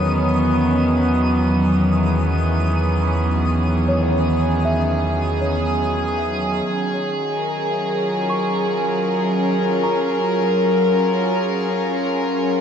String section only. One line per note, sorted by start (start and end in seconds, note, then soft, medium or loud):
0.00 9.85 D#3 medium
0.00 6.66 E3 medium
0.00 6.64 F#3 medium
0.00 6.65 B3 medium
0.00 12.61 G#4 medium
0.00 1.77 C#5 medium
6.66 12.61 F#3 medium
7.30 12.61 A#4 medium
7.58 12.61 C#4 medium
8.00 12.61 F4 medium